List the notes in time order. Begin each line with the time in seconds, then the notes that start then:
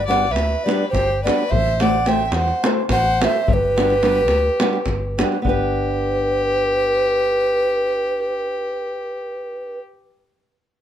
Already playing: G1
0.07 G3 B3 D4 G4 B4 D5 F#5
0.11 davul high
0.25 davul high
0.31 D2 B4 E5
0.36 davul high
0.53 davul high
0.64 G3 B3 D4 G4 B4 D5
0.69 davul high
0.90 G1 G4 C5
0.95 davul high, davul low
1.23 G3 B3 D4 G4 B4 D5, davul high
1.50 A1 C5 E5, davul low
1.67 davul high
1.80 A3 C4 E4 A4 C5 D5 F#5, davul high
2.06 A3 C4 E4 A4 C5 E5 G5, davul high
2.19 davul high
2.25 E5 G5
2.31 E2 C5 F#5, davul high
2.48 davul high
2.64 A3 C4 E4 A4 C5, davul high
2.89 A1 C5 F#5, davul high, davul low
3.22 A3 C4 E4 A4 C5 E5, davul high
3.48 G1 G4, davul low
3.54 B4
3.76 G3 B3 D4 G4 B4, davul high
3.90 davul high
4.03 G3 B3 D4 G4 B4, davul high
4.16 davul high
4.28 D2, davul high
4.60 G3 B3 D4 G4 B4, davul high
4.73 davul high
4.86 G1, davul high, davul low
5.18 G3 B3 D4 G4 B4, davul high
5.32 davul high
5.42 G1 B3 D4, davul low
5.46 G4 B4